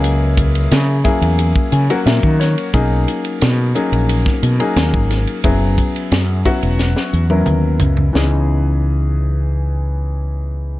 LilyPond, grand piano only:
\new Staff \with { instrumentName = "Grand piano" } { \time 4/4 \key cis \dorian \tempo 4 = 89 << { r2 r8 gis''8 e''8 cis''8 | r1 | r1 | r1 | } \\ { <fis ais cis' e' gis'>4~ <fis ais cis' e' gis'>16 r16 <fis ais cis' e' gis'>4~ <fis ais cis' e' gis'>16 <fis ais cis' fis' ais'>4~ <fis ais cis' fis' ais'>16 | <fis ais cis' dis' gis'>4. <fis ais cis' dis' gis'>4~ <fis ais cis' dis' gis'>16 <fis ais cis' dis' gis'>4~ <fis ais cis' dis' gis'>16 | <fis b cis' e' gis'>4. <fis b cis' e' fis'>4~ <fis b cis' e' fis'>16 <fis b cis' e' ais'>4~ <fis b cis' e' ais'>16 | <e b cis' dis' gis'>1 | } >> }